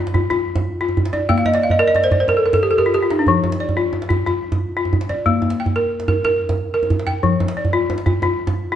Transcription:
Already playing: F4 D5
0.07 djembe slap
0.14 F4, djembe bass
0.30 F4, djembe slap, djembe tone
0.48 djembe slap
0.56 djembe slap, djembe tone, djembe bass
0.64 djembe slap
0.81 F4
0.89 djembe tone
0.97 djembe bass
1.05 djembe slap
1.13 D5, djembe tone
1.29 A#3 G5, djembe bass
1.38 F5, djembe slap
1.45 D#5, djembe tone
1.54 D5, djembe slap
1.61 F5, djembe slap
1.70 D#5, djembe tone, djembe bass
1.79 A#4 D5
1.88 D#5
1.95 D5, djembe tone
2.03 C5, djembe slap
2.11 D5, djembe slap, djembe bass
2.20 C5, djembe slap
2.28 A#4, djembe tone
2.37 A4
2.45 A#4, djembe slap
2.53 A4, djembe slap, djembe tone, djembe bass
2.63 G4
2.71 A4
2.78 G4 A#4, djembe bass
2.86 F4
2.94 G4, djembe slap
3.03 F4
3.10 D#4, djembe slap
3.19 D4
3.26 F3, djembe bass
3.44 djembe tone
3.52 djembe slap
3.60 D5
3.69 djembe tone, djembe bass
3.77 F4
3.93 djembe tone
4.02 djembe slap
4.09 F4, djembe bass
4.26 F4, djembe slap, djembe tone
4.44 djembe slap
4.52 djembe slap, djembe tone, djembe bass
4.60 djembe slap
4.77 F4
4.85 djembe tone
4.93 djembe bass
5.01 djembe slap
5.09 D5, djembe tone
5.26 A#3, djembe bass
5.42 djembe tone
5.50 djembe slap
5.60 G5
5.66 djembe tone, djembe bass
5.76 A#4
6.00 djembe slap
6.08 A#4, djembe bass
6.24 A#4, djembe slap, djembe tone
6.41 djembe slap
6.49 djembe slap, djembe tone, djembe bass
6.58 djembe slap
6.74 A#4
6.83 djembe tone
6.90 djembe bass
6.99 djembe slap
7.07 G5, djembe tone
7.23 F3, djembe bass
7.40 djembe tone
7.48 djembe slap
7.57 D5
7.65 djembe tone, djembe bass
7.73 F4
7.90 djembe tone
7.98 djembe slap
8.06 F4, djembe bass
8.22 F4, djembe slap, djembe tone
8.39 djembe slap
8.47 djembe slap, djembe tone, djembe bass
8.55 djembe slap
8.72 F4

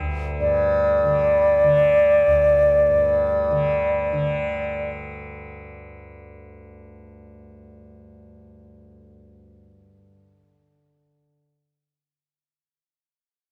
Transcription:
Already playing: G2 D3
0.00 D2
0.40 G2 D5
1.03 D3
1.64 D3
2.26 D2
2.88 G2
3.50 D3
4.13 D3

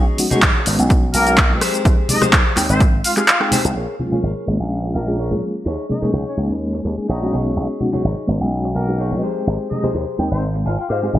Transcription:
Already playing: G#3 B3 C#4 D#4 F#4 G#4 C#5
0.08 shaker
0.18 G#3 B3 C#4 D#4 F#4, open hi-hat, high conga, shaker
0.30 G#3 B3 C#4 D#4 F#4 G#4 C#5, muted slap bass stroke, closed hi-hat, low conga, shaker
0.42 G#1, kick, clap, closed hi-hat, shaker
0.66 G#1 G#3 B3 C#4 D#4 F#4, open hi-hat, shaker
0.79 B1, closed hi-hat, shaker
0.89 muted clean electric guitar stroke, kick, closed hi-hat, shaker
1.02 muted clean electric guitar stroke
1.14 B1 A#3 A#4, open hi-hat, shaker
1.26 G#3 B3 C#4 D#4 F#4, closed hi-hat, shaker
1.38 kick, clap, closed hi-hat, shaker
1.50 B2 G#3 C4 D#4 G5, high conga, shaker
1.61 G4 G#4 C5, cross-stick, open hi-hat, shaker
1.74 closed hi-hat, shaker
1.85 G#1, kick, closed hi-hat, shaker
1.98 shaker
2.09 G#3 C4 D#4 G4 G#4 D#5, open hi-hat, high conga, low conga, shaker
2.21 G#3 C4 D#4 G4 G#4 C5, muted slap bass stroke, cross-stick, closed hi-hat, high conga, low conga, shaker
2.33 D#2, kick, clap, closed hi-hat, shaker
2.56 D#2 G#3 C4 D#4 G5, clap, open hi-hat, shaker
2.58 shaker
2.69 G#1 C4 C5, closed hi-hat, shaker
2.80 muted clean electric guitar stroke, kick, closed hi-hat, shaker
2.92 muted clean electric guitar stroke, shaker
3.04 F4 F5, open hi-hat, shaker
3.17 G#3 C4 D#4 F4 G4 G#4 F5, clap, closed hi-hat, shaker
3.28 F4 F5, clap, closed hi-hat, shaker
3.40 G#3 C4 D#4 F4 G#4 F5 G5, cross-stick
3.51 G4 G#4 C5, muted slap bass stroke, open hi-hat, low conga, shaker
3.64 C2, closed hi-hat, shaker
3.75 A#1 G#4 A#4 C#5
3.99 G#3 A#3 C#4 F4 G#4, high conga, low conga, shaker
4.11 G#3 A#3 C#4 F4 G#4 A#4 C#5, muted slap bass stroke, high conga, low conga, shaker
4.23 G#1, shaker
4.36 shaker
4.46 G#1 G#3 A#3 C#4 F4 G#4
4.60 A#1
4.83 muted clean electric guitar stroke
4.94 A#1 A#3 A#4, muted clean electric guitar stroke
5.07 G#3 A#3 C#4 F4 G#4, muted clean electric guitar stroke
5.18 G#4 A#4 C#5
5.31 A#2 G#3 A#3 C#4 F4 G#4, high conga, shaker
5.43 shaker
5.56 shaker
5.65 D#2 D#4 G#4 C#5, shaker
5.89 G#3 A#3 C#4 D#4 G#4 D#5, high conga, low conga, shaker
6.02 G#3 A#3 C#4 D#4 G#4 C#5, muted slap bass stroke, high conga, low conga, shaker
6.13 C#2, shaker
6.26 C#4 C#5, shaker
6.36 C#2 G#3 A#3 C#4 D#4 G#4
6.50 D#2
6.73 muted clean electric guitar stroke
6.84 D#2, muted clean electric guitar stroke, shaker
6.97 G#3 A#3 C#4 D#4 G#4, muted clean electric guitar stroke, muted slap bass stroke
7.08 A#1 D#4 G#4 C#5 D#5
7.21 G#3 B3 C#4 D#4 F#4
7.32 B1 D#4 G#4 C#5, low conga, shaker
7.57 B1
7.80 G#3 B3 C#4 D#4 F#4, high conga, low conga, shaker
7.92 G#3 B3 C#4 D#4 F#4 G#4 C#5, muted slap bass stroke, high conga, low conga, shaker
8.04 G#1, shaker
8.27 G#1 G#3 B3 C#4 D#4 F#4, shaker
8.41 B1
8.64 muted clean electric guitar stroke
8.75 B1 A#3 A#4, muted clean electric guitar stroke, shaker
8.88 G#3 B3 C#4 D#4 F#4, muted clean electric guitar stroke
8.99 D#4 G#4 C#5
9.11 B2 G#3 C4 D#4 G5, high conga, shaker
9.22 G4 G#4 C5
9.37 shaker
9.47 G#1, shaker
9.70 G#3 C4 D#4 G4 G#4 D#5, high conga, low conga, shaker
9.83 G#3 C4 D#4 G4 G#4 C5, muted slap bass stroke, high conga, low conga, shaker
9.94 D#2, shaker
10.08 shaker
10.18 D#2 G#3 C4 D#4 G5, shaker
10.31 G#1 C4 C5
10.43 shaker
10.54 muted clean electric guitar stroke
10.65 G#1 F4 F5 G#5, muted clean electric guitar stroke, shaker
10.78 F4 F5 G5, muted clean electric guitar stroke
10.89 G#2 F4 G4 G#4 C5 D#5 F5
11.02 G#3 C4 D#4 F4 G4 G#4 F5
11.13 G#1 G#3 C4 D#4 G4 G#4, low conga, shaker

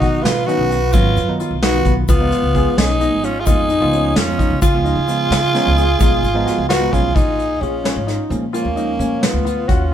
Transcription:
Already playing: B2 D#4 F#4
0.00 D#3 F#3 B3 F#4, kick, closed hi-hat
0.22 B2 F4 B4, snare, closed hi-hat
0.45 D#3 F#3 B3 C#4 D#4 F#4 B4, closed hi-hat
0.58 B1
0.70 F#4, closed hi-hat
0.93 G#1 D#3 F#3 B3 C#4 F4 B4, kick, closed hi-hat, shaker
1.16 F#2, closed hi-hat, shaker
1.28 D#3 F#3 B3 D#4
1.40 F4, closed hi-hat
1.51 B1
1.62 D#4 F#4 B4, snare, closed hi-hat
1.74 D#3 F#3 B3 F4
1.85 B1 B3, kick, closed hi-hat
2.08 C#2 B3 F4, kick, closed hi-hat, shaker
2.20 F3 G#3 B3 D#4
2.32 closed hi-hat
2.43 C#2
2.53 F3 G#3 B3 D#4 G#4, kick, closed hi-hat
2.77 B1 C#4 D#4 G#4, snare, closed hi-hat
3.00 F3 G#3 B3 D#4, closed hi-hat
3.13 G#1
3.23 C#4 F4, closed hi-hat
3.40 F4 G#4
3.46 F2 F3 G#3 B3 D#4 F4 G#4, kick, closed hi-hat, shaker
3.69 D#4, closed hi-hat, shaker
3.80 C#2 F3 G#3 B3 F4
3.92 C#4, closed hi-hat
4.16 F2 C#4 F4, snare, closed hi-hat
4.27 F3 G#3 B3 D#4
4.38 D#4, kick, closed hi-hat
4.50 C#2
4.62 C#2 F4 G#4, kick, closed hi-hat, shaker
4.73 F3 G#3 B3 F4
4.84 D#4, closed hi-hat
4.96 C#3
5.08 F3 G#3 B3 D#4 F4, closed hi-hat, shaker
5.31 C#3, snare, closed hi-hat
5.54 F3 G#3 B3 C#4 D#4, snare, closed hi-hat
5.66 C#2
5.77 G#4, closed hi-hat, shaker
5.99 B1 F3 G#3 B3 D#4 G#4, kick, closed hi-hat, shaker
6.23 G#1, closed hi-hat, shaker
6.35 F3 G#3 B3 D#4
6.46 F#4, snare, closed hi-hat
6.58 C#2
6.69 F4 F#4 B4, snare, closed hi-hat
6.80 F3 G#3 B3 D#4
6.92 B1 C#4 F4 G#4, kick, closed hi-hat
7.15 A#1 D#4 F4 G#4, kick, closed hi-hat
7.39 closed hi-hat
7.61 A#1 C#4 F4 G#4, closed hi-hat
7.84 C#4, snare, closed hi-hat
7.96 G#1
8.07 D#4, snare, closed hi-hat
8.30 A#2 F3 G#3 A#3 C#4, closed hi-hat
8.52 F3 G#3 A#3 C#4 F4, closed hi-hat
8.65 D#2
8.75 F3 G#3 A#3 C#4 D#4, closed hi-hat
8.99 A#2 C#4, closed hi-hat
9.22 B3 F4, snare, closed hi-hat
9.33 D2
9.45 F4, closed hi-hat
9.68 D#2 C#4 F4 F#4, kick, closed hi-hat

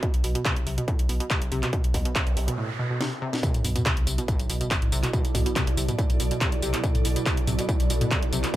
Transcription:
0.03 B2, kick, closed hi-hat
0.14 B1, closed hi-hat
0.24 B1 B2, open hi-hat
0.35 B2, closed hi-hat
0.45 C3, kick, clap, closed hi-hat
0.56 B1, closed hi-hat
0.67 B1 C3, open hi-hat
0.78 B2, closed hi-hat
0.88 A2, kick, closed hi-hat
0.99 B1, closed hi-hat
1.09 B1 B2, open hi-hat
1.20 B2, closed hi-hat
1.30 C3, kick, clap, closed hi-hat
1.42 B1, closed hi-hat
1.52 B1 C3, open hi-hat
1.63 B2, clap, closed hi-hat
1.73 B2, kick, closed hi-hat, noise sweep
1.84 B1, closed hi-hat
1.94 B1 B2, kick, open hi-hat
2.05 B2, closed hi-hat
2.15 C3, kick, clap, closed hi-hat
2.27 B1, closed hi-hat
2.37 B1 C3, open hi-hat
2.48 B2, closed hi-hat
2.58 A2
2.79 B2
2.90 B2
3.01 C3, snare
3.22 C3
3.33 B2, snare
3.43 B2 F#3 E4, kick, closed hi-hat, tambourine, sub drop
3.54 B1, closed hi-hat, tambourine
3.64 B1 B2, open hi-hat, tambourine
3.73 B2 A4, closed hi-hat, mid tom, tambourine
3.85 C3 D5, kick, clap, closed hi-hat, tambourine
3.97 B1, closed hi-hat
4.07 B1 C3, open hi-hat, tambourine
4.18 B2, closed hi-hat, tambourine
4.28 A2, kick, closed hi-hat, mid tom, tambourine
4.39 B1, closed hi-hat, tambourine
4.50 B1 B2, open hi-hat, tambourine
4.61 B2, closed hi-hat, tambourine
4.71 C3, kick, clap, closed hi-hat, tambourine
4.82 B1, closed hi-hat, mid tom
4.92 B1 C3, open hi-hat, tambourine
5.03 B2, clap, closed hi-hat, tambourine
5.13 B2, kick, closed hi-hat, tambourine
5.25 B1, closed hi-hat, tambourine
5.35 B1 B2, kick, open hi-hat, mid tom, tambourine
5.46 B2, closed hi-hat, tambourine
5.56 C3, kick, clap, closed hi-hat, tambourine
5.67 B1, closed hi-hat
5.77 B1 C3, open hi-hat, tambourine
5.89 B2, closed hi-hat, mid tom, tambourine
5.99 A2, kick, closed hi-hat, tambourine
6.10 B1, closed hi-hat, tambourine
6.20 B1 B2, open hi-hat, tambourine
6.31 B2, closed hi-hat, tambourine
6.41 C3, kick, clap, closed hi-hat, mid tom, tambourine
6.52 B1, closed hi-hat
6.62 B1 C3, open hi-hat, tambourine
6.74 B2, clap, closed hi-hat, tambourine
6.84 B2, kick, closed hi-hat, tambourine
6.95 B1, closed hi-hat, mid tom, tambourine
7.05 B1 B2, open hi-hat, tambourine
7.16 B2, closed hi-hat, tambourine
7.26 C3, kick, clap, closed hi-hat, tambourine
7.37 B1, closed hi-hat
7.47 B1 C3, open hi-hat, mid tom, tambourine
7.59 B2, closed hi-hat, tambourine
7.69 A2, kick, closed hi-hat, tambourine
7.80 B1, closed hi-hat, tambourine
7.90 B1 B2, open hi-hat, tambourine
8.01 B2, closed hi-hat, mid tom, tambourine
8.11 C3, kick, clap, closed hi-hat, tambourine
8.22 B1, closed hi-hat
8.32 B1 C3, open hi-hat, tambourine
8.44 B2, clap, closed hi-hat, tambourine

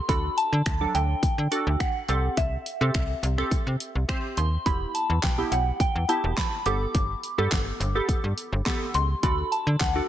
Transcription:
0.09 D2 D4 F#4 A4 B5, kick, closed hi-hat
0.37 A5, closed hi-hat
0.53 D3
0.66 D2, finger snap, kick, closed hi-hat
0.81 F#3 D4 A4
0.95 D2 G5, closed hi-hat
1.23 D3, kick, closed hi-hat
1.38 D3
1.51 D4 F#4 A4, closed hi-hat
1.67 D2
1.80 F#5, finger snap, kick, closed hi-hat
2.09 C2 C4 G4 A4, closed hi-hat
2.37 C2 E5, kick, closed hi-hat
2.66 closed hi-hat
2.81 C3 C4 G4 A4
2.94 C2, finger snap, kick, closed hi-hat
3.23 C2, closed hi-hat
3.38 C4 G4 A4, finger snap
3.51 C3, kick, closed hi-hat
3.67 C3
3.80 closed hi-hat
3.95 C2
4.09 C4 G4 C5, finger snap, kick, closed hi-hat
4.37 D#2 C6, closed hi-hat
4.66 E1 B3 E4 G4 B5, kick, closed hi-hat
4.95 A5, closed hi-hat
5.10 E2
5.23 B1 G5, kick, snare, clap, closed hi-hat
5.38 B3 E4 G4
5.52 B1 F#5, closed hi-hat
5.80 E2 G5, kick, closed hi-hat
5.95 E2
6.09 B3 E4 G4 A5, closed hi-hat
6.24 E1
6.37 B5, kick, snare, clap, closed hi-hat
6.66 G1 B3 G4 A4 D6, closed hi-hat
6.95 G1, kick, closed hi-hat
7.23 closed hi-hat
7.38 G2 B3 G4 A4
7.52 G1, kick, snare, clap, closed hi-hat
7.80 G1, closed hi-hat
7.95 B3 G4 A4
8.09 G2, kick, closed hi-hat
8.24 G2
8.38 closed hi-hat
8.52 G1
8.66 B3 G4 A4, kick, snare, clap, closed hi-hat
8.94 C#2 C6, closed hi-hat
9.23 D2 D4 F#4 A4 B5, kick, closed hi-hat
9.52 A5, closed hi-hat
9.67 D3
9.80 D2 F#5, kick, snare, clap, closed hi-hat
9.95 D4 F#4 A4

